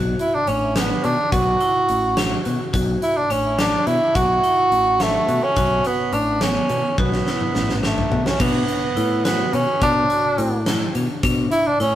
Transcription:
0.00 0.13 B1 medium
0.00 0.30 F#4 medium
0.19 0.36 E4 medium
0.19 closed hi-hat soft
0.34 0.50 D4 medium
0.47 0.92 A1 medium
0.47 0.78 C#4 medium
0.47 0.67 D4 medium
0.47 closed hi-hat medium
0.76 1.06 B3 medium
0.76 1.15 D4 medium
0.76 snare loud
0.76 closed hi-hat medium
1.04 1.15 B2 medium
1.04 1.31 D4 medium
1.04 closed hi-hat medium
1.32 1.54 B1 medium
1.32 2.41 F#4 medium
1.32 1.52 F#4 medium
1.32 kick loud
1.32 closed hi-hat medium
1.60 2.00 E4 medium
1.60 closed hi-hat medium
1.89 2.33 A1 medium
1.89 closed hi-hat medium
2.17 2.37 D4 medium
2.17 snare loud
2.17 closed hi-hat medium
2.45 2.57 B2 medium
2.45 2.65 F#4 medium
2.45 closed hi-hat medium
2.73 2.96 B1 medium
2.73 3.13 F#4 medium
2.73 kick medium
2.73 closed hi-hat medium
3.02 3.18 E4 medium
3.02 closed hi-hat medium
3.17 3.33 D4 medium
3.30 3.74 A1 medium
3.30 3.59 C#4 medium
3.30 3.50 D4 medium
3.30 closed hi-hat medium
3.58 3.98 D4 medium
3.58 3.88 D4 medium
3.58 snare loud
3.58 closed hi-hat medium
3.87 3.98 B2 medium
3.87 4.17 E4 loud
3.87 closed hi-hat medium
4.15 4.37 B1 medium
4.15 4.35 F#4 medium
4.15 5.03 F#4 loud
4.15 kick loud
4.15 closed hi-hat medium
4.43 4.83 E4 medium
4.43 closed hi-hat medium
4.72 5.16 A1 medium
4.72 closed hi-hat medium
5.00 5.45 A3 medium
5.00 5.20 D4 medium
5.00 snare medium
5.00 closed hi-hat medium
5.28 5.39 B2 medium
5.28 5.48 F#4 medium
5.28 closed hi-hat soft
5.43 5.88 C#4 medium
5.56 5.79 B1 medium
5.56 5.96 F#4 medium
5.56 kick loud
5.56 closed hi-hat medium
5.85 6.15 B3 medium
5.85 closed hi-hat medium
6.13 6.57 A1 medium
6.13 6.33 D4 medium
6.13 6.44 D4 medium
6.13 closed hi-hat medium
6.41 6.81 B3 medium
6.41 6.98 C#4 medium
6.41 snare loud
6.41 closed hi-hat medium
6.69 6.81 B2 medium
6.69 closed hi-hat medium
6.98 7.20 B1 loud
6.98 7.79 B3 medium
6.98 7.18 F#4 medium
6.98 kick loud
7.12 snare soft
7.26 7.66 E4 medium
7.26 snare medium
7.41 mid tom medium
7.55 7.99 A1 medium
7.55 snare medium
7.69 snare medium
7.83 8.28 A3 medium
7.83 8.03 D4 medium
7.83 snare medium
7.98 floor tom medium
8.11 8.23 B2 medium
8.11 8.31 F#4 medium
8.11 floor tom medium
8.26 8.42 C#4 medium
8.26 snare medium
8.40 8.62 B2 medium
8.40 9.25 B3 medium
8.40 8.79 D4 medium
8.40 kick loud
8.40 crash loud
8.68 closed hi-hat medium
8.96 9.41 A2 medium
8.96 9.16 E4 medium
8.96 closed hi-hat medium
9.25 9.55 B3 medium
9.25 9.64 F#4 medium
9.25 snare loud
9.25 closed hi-hat medium
9.53 9.64 B2 medium
9.53 9.82 C#4 medium
9.53 closed hi-hat soft
9.81 10.04 B2 medium
9.81 10.01 D4 medium
9.81 10.63 D4 medium
9.81 kick loud
9.81 closed hi-hat medium
10.10 10.49 F#4 medium
10.10 closed hi-hat medium
10.38 10.82 A2 medium
10.38 closed hi-hat medium
10.66 10.86 E4 medium
10.66 snare loud
10.66 closed hi-hat medium
10.95 11.06 B2 medium
10.95 11.15 D4 medium
10.95 closed hi-hat medium
11.23 11.46 B2 loud
11.23 11.63 D4 medium
11.23 kick loud
11.23 closed hi-hat medium
11.51 11.68 E4 medium
11.51 closed hi-hat medium
11.67 11.80 D4 medium
11.80 11.95 A2 medium
11.80 11.95 C#4 medium
11.80 11.95 E4 medium
11.80 closed hi-hat medium

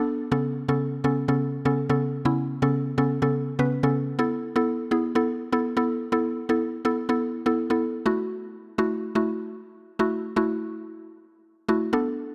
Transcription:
0.00 0.25 B3 medium
0.00 0.25 D4 medium
0.00 0.25 A4 medium
0.32 0.61 C#3 medium
0.32 0.61 B3 medium
0.32 0.61 C#4 medium
0.32 0.61 A4 medium
0.68 0.97 C#3 medium
0.68 0.97 B3 medium
0.68 0.98 C#4 medium
0.68 0.98 A4 medium
1.04 1.24 C#3 medium
1.04 1.24 B3 medium
1.04 1.24 C#4 medium
1.04 1.24 A4 medium
1.28 1.58 C#3 medium
1.28 1.58 B3 medium
1.28 1.58 C#4 medium
1.28 1.58 A4 medium
1.65 1.84 C#3 medium
1.65 1.85 B3 medium
1.65 1.85 C#4 medium
1.65 1.85 A4 medium
1.89 2.18 C#3 medium
1.89 2.18 B3 medium
1.89 2.19 C#4 medium
1.89 2.19 A4 medium
2.25 2.55 C#3 medium
2.25 2.55 B3 medium
2.25 2.55 C#4 medium
2.25 2.55 E4 loud
2.62 2.91 C#3 medium
2.62 2.91 B3 medium
2.62 2.91 C#4 medium
2.62 2.91 A4 medium
2.98 3.17 C#3 medium
2.98 3.18 B3 medium
2.98 3.18 C#4 medium
2.98 3.18 A4 medium
3.22 3.51 C#3 medium
3.22 3.51 B3 medium
3.22 3.52 C#4 medium
3.22 3.52 A4 medium
3.59 3.78 C#3 medium
3.59 3.78 B3 medium
3.59 3.78 C#4 medium
3.59 3.78 B4 medium
3.83 4.12 C#3 medium
3.83 4.12 B3 medium
3.83 4.12 C#4 medium
3.83 4.12 A4 medium
4.19 4.48 B3 medium
4.19 4.48 E4 medium
4.19 4.48 A4 loud
4.56 4.85 B3 medium
4.56 4.85 E4 medium
4.56 4.85 A4 medium
4.91 5.11 B3 medium
4.91 5.11 E4 medium
4.91 5.11 G#4 medium
5.15 5.45 B3 medium
5.15 5.45 E4 medium
5.15 5.45 A4 loud
5.52 5.72 B3 medium
5.52 5.72 E4 medium
5.52 5.72 A4 medium
5.77 6.05 B3 medium
5.77 6.06 E4 medium
5.77 6.06 A4 medium
6.12 6.42 B3 medium
6.12 6.42 E4 medium
6.12 6.42 A4 loud
6.49 6.78 B3 medium
6.49 6.78 E4 medium
6.49 6.78 A4 medium
6.85 7.05 B3 medium
6.85 7.05 E4 medium
6.85 7.05 A4 medium
7.09 7.38 B3 medium
7.09 7.38 E4 medium
7.09 7.39 A4 medium
7.46 7.65 B3 medium
7.46 7.65 E4 medium
7.46 7.65 A4 medium
7.70 7.99 B3 medium
7.70 7.99 E4 medium
7.70 7.99 A4 medium
8.06 8.64 A3 medium
8.06 8.65 E4 medium
8.06 8.65 F#4 loud
8.78 9.08 A3 medium
8.78 9.08 E4 medium
8.78 9.08 F#4 loud
9.15 9.83 A3 medium
9.15 9.83 E4 medium
9.15 9.83 F#4 medium
9.99 10.29 A3 medium
9.99 10.29 E4 medium
9.99 10.29 F#4 loud
10.36 11.14 A3 medium
10.36 11.14 E4 medium
10.36 11.14 F#4 loud
11.69 11.88 A3 medium
11.69 11.88 E4 medium
11.69 11.89 F#4 medium
11.93 12.35 B3 medium
11.93 12.35 D4 medium
11.93 12.35 A4 loud

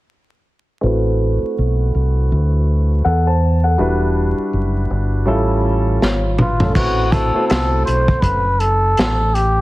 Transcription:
0.81 1.39 A1 medium
0.81 3.00 A3 medium
0.81 3.00 C4 medium
0.81 3.01 E4 medium
0.81 3.01 F#4 medium
0.81 3.01 B4 medium
1.42 muted fingered electric bass stroke soft
1.58 1.93 B1 medium
1.95 2.29 C2 medium
2.32 3.02 D2 medium
3.04 3.75 E2 medium
3.04 3.25 A4 medium
3.04 3.25 F#5 medium
3.27 3.62 C5 medium
3.27 3.62 A5 medium
3.64 3.99 A4 soft
3.64 3.99 F#5 medium
3.78 4.34 E1 medium
3.78 5.24 G3 medium
3.78 5.24 D4 medium
3.78 5.24 E4 medium
3.78 5.25 F#4 medium
3.78 5.25 B4 medium
4.38 muted fingered electric bass stroke soft
4.53 4.88 F#1 medium
4.90 5.25 G1 medium
5.25 5.97 A1 medium
5.25 6.71 G3 medium
5.25 5.99 C#4 medium
5.25 6.00 E4 medium
5.25 6.00 F4 medium
5.25 6.00 A4 medium
6.02 6.72 G#1 medium
6.02 6.37 F4 medium
6.02 6.37 C#5 medium
6.02 snare soft
6.38 6.74 F4 medium
6.38 6.59 B4 medium
6.38 mid tom medium
6.60 6.96 C#4 medium
6.60 6.95 A4 medium
6.60 floor tom medium
6.75 7.31 A1 medium
6.75 7.04 A3 medium
6.75 7.04 C4 medium
6.75 7.04 E4 medium
6.75 7.13 F#4 medium
6.75 7.04 F#4 medium
6.75 7.04 B4 medium
6.75 kick loud
6.75 crash medium
7.12 7.28 A3 medium
7.12 7.28 C4 medium
7.12 7.28 E4 medium
7.12 7.28 F#4 medium
7.12 7.47 A4 medium
7.12 7.28 C5 medium
7.12 kick medium
7.12 closed hi-hat soft
7.34 8.37 A3 medium
7.34 7.40 B3 medium
7.34 8.37 E4 medium
7.34 8.38 F#4 medium
7.34 8.38 C5 medium
7.41 8.41 C4 medium
7.48 7.85 C2 medium
7.48 7.83 A4 medium
7.48 snare loud
7.48 closed hi-hat medium
7.85 8.22 B1 medium
7.85 8.22 C5 medium
7.85 closed hi-hat medium
8.08 kick medium
8.21 8.93 F#1 medium
8.21 8.61 B4 loud
8.21 kick medium
8.21 closed hi-hat medium
8.60 9.36 A4 medium
8.60 closed hi-hat medium
8.97 9.61 A1 medium
8.97 snare loud
8.97 closed hi-hat medium
9.34 9.61 G4 medium
9.34 closed hi-hat medium

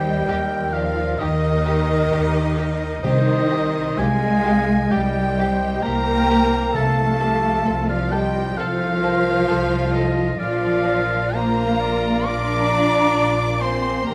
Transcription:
0.00 0.17 D#2 medium
0.00 3.07 D#3 medium
0.00 0.70 G3 medium
0.00 0.74 G3 medium
0.00 0.27 A#3 medium
0.00 3.88 D#4 medium
0.00 0.74 G4 medium
0.00 0.57 A#4 medium
0.00 0.28 C5 medium
0.00 0.71 D#5 medium
0.00 0.71 G5 medium
0.00 0.74 G5 loud
0.27 1.09 D#2 medium
0.27 0.36 G4 medium
0.27 2.13 A#4 medium
0.59 2.42 A#4 medium
0.73 1.20 F3 medium
0.73 1.19 F3 medium
0.73 1.19 F4 medium
0.73 0.82 G4 medium
0.73 1.19 D5 medium
0.73 1.20 F5 loud
0.73 1.20 F5 medium
1.18 2.02 D#2 medium
1.18 2.87 D#3 medium
1.18 3.03 D#3 medium
1.18 3.02 D#4 medium
1.18 1.28 G4 medium
1.18 2.75 A#4 loud
1.18 2.76 D#5 loud
1.18 3.00 D#5 loud
1.51 2.11 A#3 medium
1.66 1.74 G4 medium
2.12 2.93 D#2 medium
2.12 3.07 A#3 medium
2.12 2.59 G4 medium
2.12 2.21 G4 medium
2.58 2.66 G4 medium
2.58 3.02 A#4 medium
3.03 3.88 C2 medium
3.03 6.73 C3 medium
3.03 4.42 C3 loud
3.03 3.97 D#3 medium
3.03 3.97 D#4 medium
3.03 3.12 G4 medium
3.03 3.69 C5 loud
3.03 3.97 C5 medium
3.03 3.96 D#5 medium
3.03 4.00 D#5 loud
3.34 5.21 C4 medium
3.50 3.58 G4 medium
3.67 4.29 C5 medium
3.98 4.81 C2 medium
3.98 4.89 G#3 loud
3.98 4.92 G#3 loud
3.98 4.06 G4 medium
3.98 4.93 D#5 medium
3.98 4.92 F5 medium
3.98 4.92 G#5 loud
3.98 4.92 G#5 medium
4.30 5.52 C5 medium
4.44 4.52 G4 medium
4.91 5.74 C2 medium
4.91 6.78 G3 medium
4.91 5.84 G3 medium
4.91 5.84 G4 medium
4.91 4.99 G4 medium
4.91 5.40 D5 medium
4.91 5.84 D#5 medium
4.91 5.84 G5 medium
4.91 5.85 G5 medium
5.23 8.56 C4 medium
5.38 5.47 G4 medium
5.38 6.74 C5 medium
5.53 6.13 C5 medium
5.83 6.64 C2 medium
5.83 6.74 A#3 loud
5.83 6.74 A#3 medium
5.83 6.43 G4 medium
5.83 5.93 G4 medium
5.83 6.73 A#4 loud
5.83 6.74 G5 loud
5.83 6.76 A#5 loud
5.83 6.74 A#5 loud
6.15 7.64 C5 medium
6.30 6.38 G4 medium
6.44 6.78 G4 medium
6.73 7.55 C2 medium
6.73 10.43 C3 medium
6.73 8.07 C3 medium
6.73 7.86 A3 medium
6.73 7.89 A3 loud
6.73 7.85 A4 medium
6.73 7.22 A4 medium
6.73 6.83 A4 medium
6.73 7.86 F5 medium
6.73 7.89 A5 loud
6.73 7.89 A5 medium
7.04 10.43 F3 medium
7.20 7.67 G4 medium
7.20 7.28 A4 medium
7.34 9.16 F4 medium
7.65 8.47 C2 medium
7.65 8.58 F4 medium
7.65 7.73 A4 medium
7.65 8.26 C5 medium
7.88 8.11 F3 medium
7.88 8.12 F3 medium
7.88 8.11 F4 medium
7.88 8.11 D5 medium
7.88 8.11 F5 medium
7.88 8.13 F5 loud
7.96 10.43 A5 medium
8.11 8.57 G3 loud
8.11 8.57 G3 medium
8.11 8.57 G4 medium
8.11 8.19 A4 medium
8.11 8.57 D#5 medium
8.11 8.57 G5 medium
8.11 8.59 G5 loud
8.27 9.46 C5 medium
8.56 9.37 C2 medium
8.56 10.24 F3 loud
8.56 10.39 F3 medium
8.56 10.43 C4 medium
8.56 10.38 F4 loud
8.56 9.04 A4 medium
8.56 8.66 A4 medium
8.56 10.17 C5 loud
8.56 10.12 F5 loud
8.56 10.39 F5 loud
9.02 9.11 A4 medium
9.02 9.49 A#4 medium
9.17 11.02 F4 medium
9.47 10.29 C2 medium
9.47 9.56 A4 medium
9.47 10.08 C5 medium
9.47 9.94 C5 medium
9.78 10.43 A4 medium
9.93 10.02 A4 medium
9.93 10.40 D#5 medium
10.09 10.43 C5 medium
10.39 14.02 A#1 medium
10.39 14.10 A#2 medium
10.39 11.33 F3 loud
10.39 11.33 F4 medium
10.39 14.03 F4 medium
10.39 10.87 D5 medium
10.39 11.32 D5 loud
10.39 11.36 F5 loud
10.39 11.33 F5 medium
10.71 12.55 A#3 medium
10.85 11.19 A#4 medium
11.33 12.26 A#3 loud
11.33 12.26 A#3 medium
11.33 12.24 A#4 medium
11.33 11.82 C5 medium
11.33 11.95 D5 medium
11.33 12.26 F5 medium
11.33 12.28 A#5 loud
11.33 12.26 A#5 medium
11.65 13.44 A#4 medium
11.80 12.27 D5 medium
11.96 13.15 D5 medium
12.25 14.10 F3 medium
12.25 13.61 D4 medium
12.25 12.72 A#4 medium
12.25 13.60 D5 loud
12.25 13.60 A#5 loud
12.25 13.63 D6 loud
12.25 13.58 D6 loud
12.56 14.14 A#3 medium
12.70 13.78 F4 medium
12.87 14.10 F4 medium
13.16 13.75 D5 medium
13.46 14.14 A#4 medium
13.60 14.06 C4 medium
13.60 14.06 C5 medium
13.60 14.06 G#5 medium
13.60 14.06 C6 medium
13.60 14.06 C6 loud
13.76 14.10 D5 medium
14.05 14.14 D#2 medium
14.05 14.14 D#3 medium
14.05 14.14 A#3 loud
14.05 14.14 A#3 medium
14.05 14.14 G4 medium
14.05 14.14 A#4 loud
14.05 14.14 G5 loud
14.05 14.14 A#5 medium
14.05 14.14 A#5 loud

